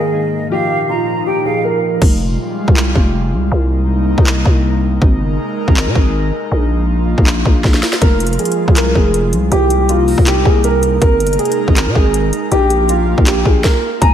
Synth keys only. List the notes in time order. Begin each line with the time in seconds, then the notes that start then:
Already playing: G#3 A#3 D#4 G#4
0.13 G#3 A#3 D#4 G#4
0.50 F3 A#3 D#4 F4
1.45 F3 A#3 D#4 F4